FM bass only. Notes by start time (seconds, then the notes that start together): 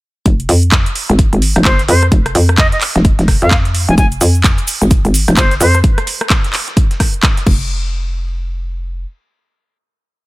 0.26 F1
0.49 F2
1.10 G#1
1.33 G#1
1.56 F1
1.65 G1
1.89 F2
2.12 F1
2.35 F2
2.96 F1
3.19 F1
3.42 F2
3.89 F1
3.98 F1
4.21 F2
4.82 G#1
5.05 G#1
5.28 F1
5.37 G1
5.61 F2
7.47 F1